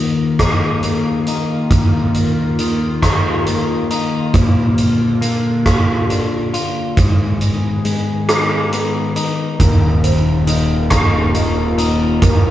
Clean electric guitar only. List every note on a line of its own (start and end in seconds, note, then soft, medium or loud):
0.00 1.27 D#2 medium
0.00 2.15 D#3 soft
0.40 1.27 D#4 medium
0.84 3.46 A#3 soft
1.28 3.01 D#4 medium
1.72 3.91 D#2 soft
2.60 4.35 D#3 soft
3.03 3.90 D#4 medium
3.47 4.34 A#3 soft
3.91 4.35 D#4 medium
4.34 6.53 A#2 medium
5.21 6.97 A#3 soft
5.66 6.52 F4 medium
6.10 6.97 D4 soft
6.54 6.97 F4 medium
6.98 9.16 G#2 medium
7.85 9.60 G#3 soft
8.29 9.16 D#4 medium
8.73 9.60 B3 soft
9.16 10.90 D#4 medium
9.60 11.79 D#2 medium
10.47 12.51 D#3 soft
10.90 11.77 D#4 medium
11.34 12.51 A#3 soft
11.78 12.51 D#4 medium
12.22 12.51 D#2 medium